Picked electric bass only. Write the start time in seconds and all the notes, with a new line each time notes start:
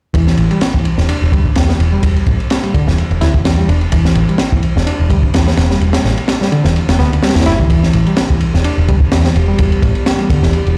0.14 E1
0.38 A1
0.98 E1
1.09 muted picked electric bass stroke
1.22 E1
1.32 D2
1.56 E2
1.79 E1
2.03 E1
2.27 A1
2.87 E1
3.10 E1
3.21 D2
3.45 E2
3.68 E1
3.93 E1
4.15 A1
4.76 E1
4.87 muted picked electric bass stroke
5.00 E1
5.10 D2
5.34 E2
5.57 E1
5.81 E1
6.04 A1
6.65 E1
6.88 E1
6.99 D2
7.36 E2
7.46 G1
7.59 D2
7.70 E1
7.94 A1
8.54 E1
8.65 muted picked electric bass stroke
8.78 E1
8.89 D2
9.12 E2
9.35 E1
9.59 E1
9.82 A1
10.43 E1
10.66 E1